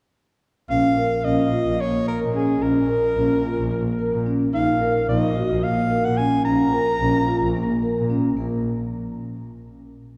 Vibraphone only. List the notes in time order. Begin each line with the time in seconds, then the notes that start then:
0.70 C#4
0.97 A#4
1.24 C#4
1.52 F4
1.79 A#3
2.07 A#4
2.34 C#4
2.62 C#4
2.89 A#4
3.16 C#4
3.44 F4
3.71 A#3
3.99 A#4
4.26 C#4
4.53 D#4
4.81 A#4
5.09 D#4
5.36 F#4
5.63 A#3
5.90 A#4
6.18 C#4
6.46 C#4
6.73 A#4
7.00 C#4
7.28 F4
7.56 A#3
7.83 A#4
8.10 C#4
8.37 A#3